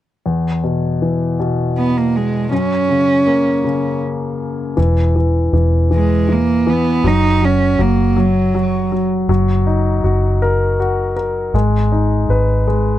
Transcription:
0.26 grand piano E2
0.64 grand piano B2
1.02 grand piano E3
1.40 grand piano B2
1.78 cello B3
1.98 cello A#3
2.16 cello G#3
2.51 grand piano F#2, cello C#4
2.89 grand piano C#3
3.27 grand piano A#3
3.65 grand piano C#3
4.77 fingered electric bass E1, grand piano E3
5.16 grand piano E3
5.53 fingered electric bass E1, grand piano E3
5.91 grand piano E3
5.95 cello G#3
6.29 grand piano E3, cello A#3
6.67 grand piano E3, cello B3
7.04 fingered electric bass F#1, grand piano F#3, cello D#4
7.42 grand piano F#3, cello C#4
7.79 fingered electric bass F#1, grand piano F#3, cello A#3
8.16 grand piano F#3, cello F#3
8.54 grand piano F#3
8.92 grand piano F#3
9.29 fingered electric bass F#1, grand piano F#3
9.67 grand piano D#4
10.04 fingered electric bass F#1, grand piano F#4
10.42 grand piano A#4
10.80 grand piano F#4
11.16 grand piano A#4
11.54 fingered electric bass G#1, grand piano G#3
11.92 grand piano D#4
12.29 fingered electric bass G#1, grand piano B4
12.67 grand piano G#3

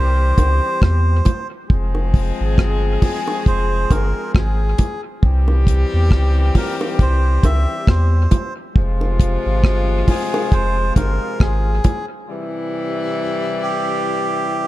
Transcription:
Already playing: sub bass C2, horn section E3 G3 C4 G4, melodica C5
0.38 sub bass C#2, kick, closed hi-hat, high bongo
0.82 sub bass E2, melodica C5, kick, cross-stick
1.25 kick, closed hi-hat, low bongo
1.70 sub bass F1, horn section F3 G#3 C4 G#4, kick
1.95 high bongo
2.14 kick, open hi-hat
2.40 sub bass G#1
2.58 sub bass G1, kick, cross-stick, hi-hat pedal
3.02 melodica G#4, kick, open hi-hat, low bongo
3.28 high bongo
3.46 sub bass F1, melodica C5, kick, hi-hat pedal
3.91 sub bass G1, melodica A#4, kick, closed hi-hat, high bongo
4.35 sub bass G#1, melodica G#4, kick, cross-stick
4.78 kick, closed hi-hat, low bongo
5.23 sub bass C2, horn section E3 G3 C4 G4, kick
5.48 high bongo
5.67 kick, closed hi-hat
5.94 sub bass E2
6.11 sub bass C#2, kick, cross-stick
6.55 melodica A#4, kick, open hi-hat, low bongo
6.81 high bongo
6.99 sub bass C2, melodica C5, kick, hi-hat pedal
7.43 sub bass C#2, melodica E5, kick, closed hi-hat, high bongo
7.87 sub bass E2, melodica C5, kick, cross-stick
8.31 kick, closed hi-hat, low bongo
8.75 sub bass F1, horn section C3 F3 G#3 F4, kick
9.01 high bongo
9.20 kick, closed hi-hat
9.46 sub bass G#1
9.64 sub bass G1, kick, cross-stick
10.08 melodica G#4, kick, open hi-hat, low bongo
10.34 high bongo
10.52 sub bass F1, melodica C5, kick, hi-hat pedal
10.96 sub bass G1, melodica A#4, kick, closed hi-hat, high bongo
11.40 sub bass G#1, melodica G#4, kick, cross-stick
11.84 kick, closed hi-hat, low bongo
12.29 horn section C3 E3 G3 E4
13.63 melodica G4

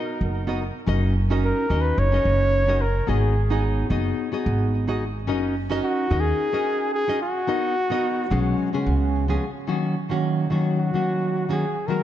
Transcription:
Already playing: nylon-string guitar B3 D#4 F#4 A#4 D#5, flugelhorn A#4
0.21 upright bass F#1
0.47 nylon-string guitar B3 D#4 F#4 A#4 D#5
0.86 upright bass F#1, nylon-string guitar C#4 D#4 F#4 A#4 D#5
1.30 nylon-string guitar C#4 D#4 F#4 A#4 D#5
1.45 flugelhorn A#4
1.70 upright bass D#2, nylon-string guitar C#4 D#4 F#4 A#4 D#5
1.81 flugelhorn B4
1.98 upright bass F#1, flugelhorn C#5
2.12 nylon-string guitar C#4 D#4 F#4 A#4 D#5
2.25 upright bass F#1
2.67 nylon-string guitar C#4 D#4 F#4 A#4 D#5
2.82 flugelhorn A#4
3.07 upright bass G#1, nylon-string guitar B3 D#4 F#4 G#4 D#5, flugelhorn G#4
3.50 nylon-string guitar B3 D#4 F#4 G#4 D#5
3.90 upright bass F#1, nylon-string guitar B3 D#4 F#4 G#4 D#5
4.32 nylon-string guitar B3 D#4 F#4 G#4 D#5
4.46 upright bass G#1
4.87 nylon-string guitar B3 D#4 F#4 G#4 D#5
5.27 upright bass F#1, nylon-string guitar C#4 D#4 F#4 A#4 D#5
5.70 nylon-string guitar C#4 D#4 F#4 A#4 D#5
5.84 flugelhorn F#4
6.10 upright bass D#2, nylon-string guitar C#4 D#4 F#4 A#4 D#5
6.20 flugelhorn G#4
6.52 nylon-string guitar C#4 D#4 F#4 A#4 D#5
6.94 flugelhorn G#4
7.08 nylon-string guitar C#4 D#4 F#4 A#4 D#5
7.22 flugelhorn F#4
7.47 nylon-string guitar B3 D#4 F#4 A#4 D#5
7.90 nylon-string guitar B3 D#4 F#4 A#4 D#5
8.30 upright bass B1, nylon-string guitar F#3 G#3 B3 C#4 G#4
8.73 nylon-string guitar C#3 G#3 B3 C#4 G#4
8.86 upright bass C#2
9.28 nylon-string guitar F3 G#3 B3 C#4 G#4
9.67 nylon-string guitar D#3 F#3 A#3 C#4 F#4
10.09 nylon-string guitar D#3 F#3 A#3 C#4 F#4
10.50 nylon-string guitar D#3 F#3 A#3 C#4 F#4
10.79 flugelhorn F#4
10.94 nylon-string guitar D#3 F#3 A#3 C#4 F#4
11.49 nylon-string guitar D#3 F#3 A#3 C#4 F#4, flugelhorn G#4
11.87 nylon-string guitar D#3 F#3 G#3 B3 F#4, flugelhorn A#4

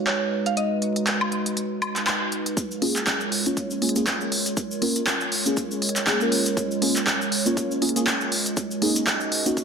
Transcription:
Already playing: ambient pad G#3 D#4 F#4 B4
0.07 synth pluck C#5, clap, closed hi-hat
0.46 synth pluck F5, closed hi-hat
0.57 synth pluck D#5, closed hi-hat
0.82 closed hi-hat
0.96 closed hi-hat
1.07 clap, closed hi-hat
1.21 high woodblock
1.32 closed hi-hat
1.46 closed hi-hat
1.57 closed hi-hat
1.82 closed hi-hat, high woodblock
1.96 clap, closed hi-hat
2.07 clap, closed hi-hat, high woodblock
2.32 closed hi-hat
2.46 closed hi-hat
2.57 ambient pad G#3 F4 A#4 C#5, kick, closed hi-hat, cabasa
2.71 cabasa
2.81 synth stab A#3 C#4 F4 G#4, open hi-hat
2.96 clap, closed hi-hat, cabasa
3.07 kick, clap, closed hi-hat, cabasa
3.21 cabasa
3.32 open hi-hat
3.46 synth stab A#3 C#4 F4 C#5, closed hi-hat, cabasa
3.57 kick, closed hi-hat, cabasa
3.71 cabasa
3.81 synth stab A#3 C#4 F4 G#4, open hi-hat
3.89 closed hi-hat
3.96 synth stab A#3 C#4 F4 G#4, closed hi-hat, cabasa
4.06 kick, clap, closed hi-hat, cabasa
4.21 cabasa
4.32 open hi-hat
4.46 closed hi-hat, cabasa
4.57 kick, closed hi-hat, cabasa
4.71 cabasa
4.81 synth stab A#3 C#4 F4 A#4, open hi-hat
4.96 closed hi-hat, cabasa
5.07 kick, clap, closed hi-hat, cabasa
5.21 cabasa
5.32 open hi-hat
5.46 synth stab A#3 C#4 F4 G#4, closed hi-hat, cabasa
5.57 kick, closed hi-hat, cabasa
5.71 cabasa
5.82 open hi-hat
5.89 closed hi-hat
5.96 clap, closed hi-hat, cabasa
6.06 synth stab A#3 C#4 F4 G#4, kick, clap, closed hi-hat, cabasa
6.20 synth stab A#3 C#4 F4 A#4, cabasa
6.32 open hi-hat
6.46 closed hi-hat, cabasa
6.57 kick, closed hi-hat, cabasa
6.71 cabasa
6.81 synth stab A#3 C#4 F4 G#4, open hi-hat
6.96 clap, closed hi-hat, cabasa
7.07 kick, clap, closed hi-hat, cabasa
7.21 cabasa
7.32 open hi-hat
7.46 synth stab A#3 C#4 F4 C#5, closed hi-hat, cabasa
7.57 kick, closed hi-hat, cabasa
7.71 cabasa
7.81 synth stab A#3 C#4 F4 G#4, open hi-hat
7.89 closed hi-hat
7.96 synth stab A#3 C#4 F4 G#4, closed hi-hat, cabasa
8.07 kick, clap, closed hi-hat, cabasa
8.21 cabasa
8.32 open hi-hat
8.46 closed hi-hat, cabasa
8.57 ambient pad C#4 F#4 D#5, kick, closed hi-hat, cabasa
8.71 cabasa
8.81 synth stab A#3 C#4 D#4 G#4, open hi-hat
8.96 closed hi-hat, cabasa
9.07 kick, clap, closed hi-hat, cabasa
9.21 cabasa
9.32 open hi-hat
9.46 synth stab A#3 C#4 D#4 F#4, closed hi-hat, cabasa
9.57 kick, closed hi-hat, cabasa

